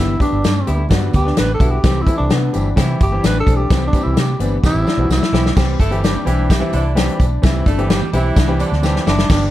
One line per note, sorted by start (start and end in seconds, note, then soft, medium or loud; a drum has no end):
0.00 0.14 G1 loud
0.00 0.10 D3 medium
0.00 0.10 G3 medium
0.00 0.11 B3 medium
0.00 0.14 B3 medium
0.00 0.21 E4 medium
0.00 0.11 G4 medium
0.07 muted conga soft
0.19 0.47 D3 medium
0.19 0.47 G3 medium
0.19 0.47 B3 medium
0.19 0.37 D4 medium
0.19 0.87 D4 medium
0.19 0.48 G4 medium
0.19 kick loud
0.19 closed hi-hat medium
0.19 tambourine medium
0.19 high conga medium
0.32 0.41 G1 loud
0.42 0.62 G2 loud
0.42 snare loud
0.42 closed hi-hat medium
0.42 tambourine loud
0.42 muted conga soft
0.55 muted conga soft
0.55 high conga medium
0.66 0.85 D2 medium
0.66 0.80 D3 medium
0.66 0.80 G3 medium
0.66 0.81 B3 medium
0.66 0.85 E4 medium
0.66 0.81 G4 medium
0.66 closed hi-hat medium
0.66 tambourine medium
0.78 high conga medium
0.89 1.08 G2 medium
0.89 1.10 D3 medium
0.89 1.10 G3 medium
0.89 1.11 B3 medium
0.89 1.08 D4 medium
0.89 1.11 F#4 medium
0.89 kick medium
0.89 snare loud
0.89 closed hi-hat medium
0.89 tambourine medium
0.89 muted conga soft
0.89 low conga medium
1.02 muted conga soft
1.13 1.31 D2 medium
1.13 1.31 B3 medium
1.13 1.40 G4 loud
1.13 kick medium
1.13 closed hi-hat medium
1.13 tambourine medium
1.13 high conga medium
1.24 1.45 D3 medium
1.24 1.45 G3 medium
1.24 1.46 B3 medium
1.24 1.46 D4 medium
1.24 snare soft
1.37 1.55 A1 medium
1.37 1.54 B4 loud
1.37 snare loud
1.37 closed hi-hat loud
1.37 tambourine medium
1.37 high conga medium
1.48 muted conga soft
1.54 1.72 A4 medium
1.59 1.78 B1 medium
1.59 1.73 D3 medium
1.59 1.74 G3 medium
1.59 1.74 B3 medium
1.59 1.78 E4 medium
1.59 1.74 F#4 medium
1.59 kick medium
1.59 closed hi-hat medium
1.59 tambourine medium
1.59 high conga medium
1.70 2.03 G4 medium
1.83 2.01 C2 medium
1.83 1.97 E3 medium
1.83 1.97 G3 medium
1.83 2.01 C4 medium
1.83 1.98 C4 medium
1.83 1.98 G4 medium
1.83 kick loud
1.83 snare loud
1.83 closed hi-hat medium
1.83 tambourine medium
1.83 muted conga soft
1.83 low conga medium
1.95 muted conga soft
2.02 2.16 E4 medium
2.07 2.34 E3 medium
2.07 2.34 G3 medium
2.07 2.34 C4 medium
2.07 2.25 E4 medium
2.07 2.34 A4 medium
2.07 kick medium
2.07 closed hi-hat medium
2.07 tambourine medium
2.07 high conga medium
2.17 2.28 C2 medium
2.17 2.34 D4 medium
2.30 2.48 C3 loud
2.30 2.55 B3 medium
2.30 2.74 D4 medium
2.30 snare loud
2.30 closed hi-hat medium
2.30 tambourine medium
2.30 muted conga soft
2.42 muted conga soft
2.42 high conga medium
2.53 2.72 G1 medium
2.53 2.67 E3 medium
2.53 2.67 G3 medium
2.53 2.67 C4 medium
2.53 2.68 G4 medium
2.53 closed hi-hat medium
2.53 tambourine medium
2.66 high conga medium
2.76 2.94 C3 medium
2.76 2.97 E3 medium
2.76 2.97 G3 medium
2.76 2.97 C4 medium
2.76 3.21 E4 medium
2.76 2.97 G4 medium
2.76 kick medium
2.76 snare loud
2.76 closed hi-hat loud
2.76 tambourine medium
2.76 low conga medium
3.00 3.18 G1 medium
3.00 3.27 G4 medium
3.00 kick loud
3.00 closed hi-hat medium
3.00 tambourine medium
3.00 high conga medium
3.11 3.32 E3 medium
3.11 3.32 G3 medium
3.11 3.32 C4 medium
3.11 3.32 G4 medium
3.23 3.41 A1 medium
3.23 3.67 D4 medium
3.23 3.40 B4 loud
3.23 snare loud
3.23 closed hi-hat loud
3.23 tambourine loud
3.23 muted conga soft
3.23 high conga medium
3.40 3.58 A4 medium
3.46 3.64 B1 loud
3.46 3.60 E3 medium
3.46 3.60 G3 medium
3.46 3.61 C4 medium
3.46 3.61 A4 medium
3.46 kick medium
3.46 closed hi-hat medium
3.46 tambourine medium
3.46 high conga medium
3.56 3.87 G4 medium
3.70 3.88 C2 loud
3.70 3.84 E3 medium
3.70 3.84 G3 medium
3.70 3.88 C4 medium
3.70 3.84 C4 medium
3.70 3.85 G4 medium
3.70 kick loud
3.70 snare loud
3.70 closed hi-hat medium
3.70 tambourine medium
3.70 low conga medium
3.82 muted conga soft
3.87 4.05 D4 medium
3.93 4.20 E3 medium
3.93 4.20 G3 medium
3.93 4.11 C4 medium
3.93 4.21 C4 medium
3.93 4.21 G4 medium
3.93 kick loud
3.93 closed hi-hat medium
3.93 tambourine medium
3.93 high conga medium
4.03 4.14 C2 loud
4.03 4.18 E4 medium
4.17 4.34 C3 loud
4.17 4.40 G4 medium
4.17 snare loud
4.17 closed hi-hat medium
4.17 tambourine medium
4.30 muted conga soft
4.30 high conga medium
4.40 4.57 G1 medium
4.40 4.54 E3 medium
4.40 4.54 G3 medium
4.40 4.57 B3 medium
4.40 4.54 C4 medium
4.40 4.54 D4 medium
4.40 closed hi-hat medium
4.40 tambourine medium
4.52 high conga medium
4.63 4.72 C2 medium
4.63 4.83 E3 medium
4.63 4.84 G3 medium
4.63 4.84 C4 medium
4.63 4.81 C4 medium
4.63 5.08 E4 loud
4.63 4.84 G4 medium
4.63 kick loud
4.63 snare medium
4.63 tambourine loud
4.63 muted conga soft
4.63 low conga medium
4.74 4.83 A1 medium
4.74 muted conga soft
4.87 5.04 D4 medium
4.87 snare medium
4.87 tambourine medium
4.87 high conga medium
4.97 5.06 B1 medium
4.97 5.19 E3 medium
4.97 5.19 G3 medium
4.97 5.19 C4 medium
4.97 5.19 F#4 medium
5.09 5.18 C2 medium
5.09 5.55 E4 medium
5.09 snare medium
5.09 tambourine loud
5.09 high conga medium
5.22 snare medium
5.22 muted conga soft
5.32 5.50 B1 medium
5.32 5.47 E3 medium
5.32 5.47 G3 medium
5.32 5.47 C4 medium
5.32 5.50 E4 medium
5.32 5.47 G4 medium
5.32 snare loud
5.32 tambourine medium
5.32 high conga medium
5.46 snare medium
5.56 5.74 C2 loud
5.56 5.77 E3 medium
5.56 5.77 G3 medium
5.56 5.74 C4 medium
5.56 5.77 C4 medium
5.56 5.77 G4 medium
5.56 kick loud
5.56 snare loud
5.56 crash medium
5.56 tambourine medium
5.56 muted conga soft
5.56 low conga medium
5.69 muted conga soft
5.79 6.14 G1 medium
5.79 5.98 A3 medium
5.79 5.98 E4 medium
5.79 5.98 A4 loud
5.79 kick medium
5.79 closed hi-hat medium
5.79 tambourine medium
5.79 high conga medium
5.91 6.11 E3 medium
5.91 6.11 G3 medium
5.91 6.12 C4 medium
5.91 6.12 G4 medium
5.91 closed hi-hat soft
6.03 6.22 G3 medium
6.03 6.47 D4 medium
6.03 6.22 G4 medium
6.03 snare loud
6.03 closed hi-hat medium
6.03 tambourine medium
6.03 muted conga soft
6.16 muted conga soft
6.16 high conga medium
6.16 low conga medium
6.25 6.61 B1 medium
6.25 6.46 E3 medium
6.25 6.45 E3 medium
6.25 6.46 G3 medium
6.25 6.47 C4 medium
6.25 6.45 E4 loud
6.25 6.47 G4 loud
6.25 closed hi-hat medium
6.25 tambourine medium
6.39 high conga medium
6.49 6.68 G3 loud
6.49 6.94 E4 medium
6.49 6.68 G4 loud
6.49 kick medium
6.49 snare loud
6.49 closed hi-hat loud
6.49 tambourine loud
6.49 muted conga soft
6.49 low conga medium
6.60 6.81 E3 medium
6.60 6.81 G3 medium
6.60 6.81 C4 medium
6.60 6.82 E4 loud
6.72 7.08 C2 medium
6.72 6.91 D3 medium
6.72 6.91 D4 medium
6.72 closed hi-hat medium
6.72 tambourine medium
6.72 high conga medium
6.95 7.23 E3 medium
6.95 7.23 G3 medium
6.95 7.23 C4 medium
6.95 7.41 D4 medium
6.95 7.23 G4 loud
6.95 snare loud
6.95 closed hi-hat loud
6.95 tambourine medium
6.95 high conga medium
7.09 closed hi-hat soft
7.20 7.37 B1 loud
7.20 kick medium
7.20 closed hi-hat medium
7.20 tambourine medium
7.20 high conga medium
7.42 7.61 C2 loud
7.42 7.63 E3 medium
7.42 7.63 G3 medium
7.42 7.63 C4 medium
7.42 7.61 C4 medium
7.42 7.64 E4 loud
7.42 kick loud
7.42 snare loud
7.42 closed hi-hat medium
7.42 tambourine medium
7.42 muted conga soft
7.42 low conga medium
7.56 muted conga soft
7.65 8.01 G1 loud
7.65 7.85 A3 medium
7.65 7.84 D4 medium
7.65 7.85 A4 loud
7.65 kick loud
7.65 closed hi-hat medium
7.65 tambourine medium
7.65 high conga medium
7.78 7.98 E3 medium
7.78 7.99 G3 medium
7.78 7.99 C4 medium
7.78 7.99 G4 medium
7.78 closed hi-hat soft
7.89 8.08 G3 medium
7.89 8.08 G4 loud
7.89 snare loud
7.89 closed hi-hat medium
7.89 tambourine medium
8.02 muted conga soft
8.02 high conga medium
8.02 low conga medium
8.12 8.30 B1 medium
8.12 8.56 E3 medium
8.12 8.33 E3 medium
8.12 8.34 G3 medium
8.12 8.34 C4 medium
8.12 8.57 E4 loud
8.12 8.31 E4 medium
8.12 8.34 G4 loud
8.12 closed hi-hat medium
8.12 tambourine medium
8.24 high conga medium
8.35 8.62 C2 medium
8.35 8.53 D4 medium
8.35 kick medium
8.35 snare loud
8.35 closed hi-hat medium
8.35 tambourine loud
8.35 low conga medium
8.47 8.68 E3 loud
8.47 8.68 G3 medium
8.47 8.68 C4 medium
8.47 8.69 G4 loud
8.47 muted conga soft
8.59 9.03 D3 medium
8.59 8.77 C4 medium
8.59 9.04 D4 medium
8.59 closed hi-hat medium
8.59 tambourine medium
8.59 high conga medium
8.72 8.97 D2 medium
8.72 snare soft
8.82 9.10 E3 medium
8.82 9.10 G3 medium
8.82 9.10 C4 medium
8.82 9.10 G4 loud
8.82 snare medium
8.82 tambourine loud
8.82 muted conga soft
8.82 high conga medium
8.95 snare medium
8.95 muted conga soft
9.06 9.24 F#1 medium
9.06 9.29 D4 medium
9.06 9.24 E4 medium
9.06 snare loud
9.06 tambourine medium
9.06 high conga medium
9.19 snare medium
9.29 9.47 G1 loud
9.29 9.49 B3 medium
9.29 9.50 D4 medium
9.29 9.51 D4 medium
9.29 9.50 G4 medium
9.29 kick loud
9.29 snare loud
9.29 crash loud
9.29 tambourine medium
9.29 low conga medium
9.40 muted conga soft